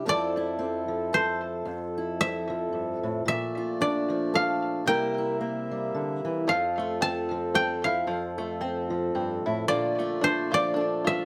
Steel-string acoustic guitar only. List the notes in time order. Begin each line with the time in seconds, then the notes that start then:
0.05 F2 F3 C4 E4 A4
0.37 E4
0.59 C4
0.88 F3
1.13 A4
1.65 F2
1.98 E4
2.21 C4
2.50 F3
2.72 G2
3.03 A2
3.25 A#2
3.57 F4
3.81 D4
4.10 F3
4.34 A4
4.86 C3 G3 A#3 E4 A#4
5.18 E4
5.41 A#3
5.71 G3
5.95 D3
6.25 E3
6.47 F2
6.79 F4
7.01 C4
7.31 F3
7.55 A4
8.07 F2
8.38 F4
8.61 C4
8.90 F3
9.15 G2
9.46 A2
9.69 A#2
10.00 F4
10.23 D4
10.53 F3
10.76 A4